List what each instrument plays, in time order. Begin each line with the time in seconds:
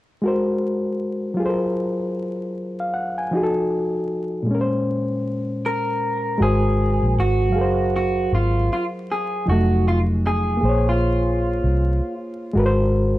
0.22 reed electric piano G#3 F#4 A#4
0.27 reed electric piano C5
1.34 reed electric piano F#3 F4
1.40 reed electric piano G#4 A4
1.46 reed electric piano A#4 C5
2.80 reed electric piano F5
2.94 reed electric piano F#5
3.18 reed electric piano G#5
3.31 reed electric piano F3 D#4 F#4
3.37 reed electric piano G#4
3.43 reed electric piano A4
4.43 reed electric piano A#2 G#3
4.51 reed electric piano C#4 A#4
4.61 reed electric piano C5
5.66 clean electric guitar A#4
6.38 fingered electric bass G#1, reed electric piano G#3 F#4 A#4
6.42 clean electric guitar G#4, reed electric piano C5
7.03 fingered electric bass A#1
7.17 fingered electric bass G#1, clean electric guitar F#4
7.50 reed electric piano F#3 F5
7.55 fingered electric bass F#1, reed electric piano G#4 A#4
7.61 reed electric piano C5
7.96 clean electric guitar F#4
8.32 fingered electric bass G#1, clean electric guitar F4
8.73 clean electric guitar F4
9.11 clean electric guitar G#4
9.46 fingered electric bass F1, reed electric piano F3 D#4, clean electric guitar F#4
9.50 reed electric piano F#3 A3
9.88 clean electric guitar F4
10.27 clean electric guitar G#4
10.57 reed electric piano A#3
10.61 fingered electric bass A#1, reed electric piano G#4 C5
10.69 reed electric piano C#5
10.89 clean electric guitar F4
11.64 fingered electric bass C2
12.53 fingered electric bass G#1, reed electric piano G#3 F#4
12.57 reed electric piano A#4 B4
12.66 reed electric piano C5